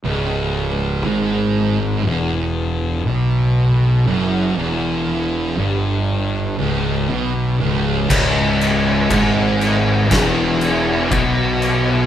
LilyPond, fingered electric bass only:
\new Staff \with { instrumentName = "Fingered electric bass" } { \clef bass \time 4/4 \key cis \minor \tempo 4 = 60 cis,,4 gis,,4 e,,4 b,,4 | fis,,8 e,,4 g,,4 cis,,8 b,,8 cis,,8 | cis,,4 gis,,4 e,,4 b,,4 | }